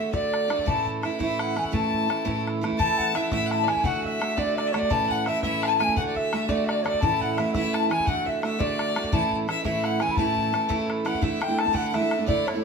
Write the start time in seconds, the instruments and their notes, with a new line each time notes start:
Already playing: steel-string acoustic guitar D3 A3 D4 F#4, fiddle E5, flute E5
0.13 steel-string acoustic guitar D3 A3 D4 F#4, fiddle D5, flute D5, bodhran
0.34 bodhran
0.48 steel-string acoustic guitar D3 A3 D4 F#4, bodhran
0.59 bodhran
0.65 steel-string acoustic guitar A2 E3 A3 C#4 E4, fiddle A5, flute A5, bodhran
0.86 bodhran
1.02 steel-string acoustic guitar E3 A3 C#4 E4, fiddle E5, flute E5, bodhran
1.19 steel-string acoustic guitar A2 E3 A3 C#4 E4, fiddle E5, flute E5, bodhran
1.34 flute E5
1.39 fiddle F#5, flute F#5, bodhran
1.56 steel-string acoustic guitar E3 A3 C#4 E4, flute G#5, bodhran
1.65 bodhran
1.72 steel-string acoustic guitar A2 E3 A3 C#4 E4, fiddle A5, bodhran
1.76 flute A5
1.93 bodhran
2.08 steel-string acoustic guitar E3 A3 C#4 E4, bodhran
2.25 steel-string acoustic guitar A2 E3 A3 C#4 E4, bodhran
2.47 bodhran
2.61 steel-string acoustic guitar E3 A3 C#4 E4, bodhran
2.72 bodhran
2.78 steel-string acoustic guitar A2 E3 A3 C#4 E4, fiddle A5, flute A5, harp A5, bodhran
2.98 flute F#5, harp F#5, bodhran
3.14 steel-string acoustic guitar E3 A3 C#4 E4, harp E5, fiddle E5, flute E5, bodhran
3.31 steel-string acoustic guitar A2 E3 A3 C#4 E4, fiddle E5, flute E5, harp E5, bodhran
3.46 fiddle F#5
3.51 fiddle E5, flute A5, harp A5, bodhran
3.63 steel-string acoustic guitar E3 A3, fiddle D5
3.68 steel-string acoustic guitar C#4 E4, fiddle E5, flute G#5, harp G#5, bodhran
3.77 bodhran
3.84 steel-string acoustic guitar D3 A3 D4 F#4, fiddle F#5, flute F#5, harp F#5, bodhran
3.96 flute F#5
4.04 fiddle E5, flute E5, harp E5, bodhran
4.19 steel-string acoustic guitar D3 A3 D4 F#4, bodhran
4.36 steel-string acoustic guitar D3 A3 D4 F#4, fiddle D5, harp D5, flute D5, bodhran
4.55 fiddle D5, harp D5, flute E5, bodhran
4.61 flute D5
4.67 fiddle E5
4.72 steel-string acoustic guitar D3 A3 D4 F#4, flute C#5, harp D5, bodhran
4.78 flute D5, fiddle D5
4.82 bodhran
4.90 steel-string acoustic guitar A2 E3 A3 C#4 E4, fiddle A5, harp A5, flute A5, bodhran
5.09 fiddle F#5, flute F#5, bodhran
5.26 steel-string acoustic guitar E3 A3 C#4 E4, fiddle E5, harp E5, flute E5, bodhran
5.42 steel-string acoustic guitar A2 E3 A3 C#4 E4, fiddle E5, harp E5, flute E5, bodhran
5.62 fiddle A5, harp A5, flute A5, bodhran
5.79 steel-string acoustic guitar E3 A3 C#4 E4, fiddle G#5, harp G#5, flute G#5, bodhran
5.88 bodhran
5.96 steel-string acoustic guitar D3 A3 D4 F#4, fiddle F#5, harp F#5, flute F#5, bodhran
6.08 fiddle D5
6.15 fiddle E5, harp E5, flute E5, bodhran
6.33 steel-string acoustic guitar D3 A3 D4 F#4, bodhran
6.48 steel-string acoustic guitar D3 A3 D4 F#4, fiddle D5, flute D5, harp D5, bodhran
6.64 fiddle D5, flute E5
6.68 harp D5, flute D5, bodhran
6.82 steel-string acoustic guitar D3 A3 D4 F#4, flute C#5, harp D5, fiddle D5, bodhran
6.87 flute D5
6.94 bodhran
7.01 steel-string acoustic guitar A2 E3 A3 C#4 E4, fiddle A5, harp A5, flute A5, bodhran
7.21 fiddle F#5, harp F#5, flute F#5, bodhran
7.37 steel-string acoustic guitar E3 A3 C#4 E4, harp E5, fiddle E5, flute E5, bodhran
7.53 steel-string acoustic guitar A2 E3 A3 C#4 E4, harp E5, fiddle E5, flute E5, bodhran
7.73 fiddle A5, flute A5, bodhran
7.87 steel-string acoustic guitar E3 A3, harp G#5, fiddle G#5, flute A5
7.91 steel-string acoustic guitar C#4 E4, flute G#5, bodhran
8.00 bodhran
8.05 steel-string acoustic guitar D3 A3 D4 F#4, harp F#5, fiddle F#5, bodhran
8.09 flute F#5
8.25 fiddle E5, harp E5, flute E5, bodhran
8.42 steel-string acoustic guitar D3 A3 D4 F#4, fiddle E5, harp E5, flute E5, bodhran
8.59 steel-string acoustic guitar D3 A3 D4 F#4, harp D5, fiddle D5, flute D5, bodhran
8.79 bodhran
8.95 steel-string acoustic guitar D3 A3 D4 F#4, bodhran
9.04 bodhran
9.12 steel-string acoustic guitar A2 E3 A3 C#4 E4, harp A5, fiddle A5, flute A5, bodhran
9.32 bodhran
9.47 steel-string acoustic guitar E3 A3 C#4 E4, flute E5, harp E5, fiddle E5, bodhran
9.64 steel-string acoustic guitar A2 E3 A3 C#4 E4, fiddle E5, harp E5, flute E5, bodhran
9.84 fiddle F#5, flute F#5, bodhran
10.00 steel-string acoustic guitar E3 A3 C#4 E4, flute G#5, harp G#5, fiddle G#5, bodhran
10.08 flute B5, harp B5, bodhran
10.17 steel-string acoustic guitar A2 E3 A3 C#4 E4, flute A5, fiddle A5, harp A5, bodhran
10.37 bodhran
10.53 steel-string acoustic guitar E3 A3 C#4 E4, bodhran
10.69 steel-string acoustic guitar A2 E3 A3 C#4 E4, bodhran
10.90 bodhran
11.05 steel-string acoustic guitar E3 A3 C#4 E4, fiddle F#5, flute F#5, harp F#5, bodhran
11.15 bodhran
11.21 steel-string acoustic guitar D3 A3 D4 E4, fiddle E5, flute E5, harp E5, bodhran
11.40 steel-string acoustic guitar D3 A3 D4 E4, fiddle G5, flute G5, harp G5, bodhran
11.48 steel-string acoustic guitar A3 D4 E4
11.58 flute A5, fiddle A5, harp A5, bodhran
11.65 steel-string acoustic guitar A3 D4 E4, bodhran
11.73 steel-string acoustic guitar D3 A3 D4 E4, fiddle F#5, flute F#5, harp F#5, bodhran
11.87 fiddle F#5
11.92 steel-string acoustic guitar D3 A3 D4 E4, fiddle E5, flute E5, harp E5, bodhran
12.01 steel-string acoustic guitar A3 D4 E4
12.11 bodhran
12.18 steel-string acoustic guitar A3 D4 E4
12.26 steel-string acoustic guitar D3 A3 D4 E4, fiddle D5, flute D5, harp D5, bodhran
12.46 steel-string acoustic guitar D3 A3 D4 E4, fiddle C#5, harp C#5, flute C#5, bodhran
12.54 steel-string acoustic guitar A3 D4 E4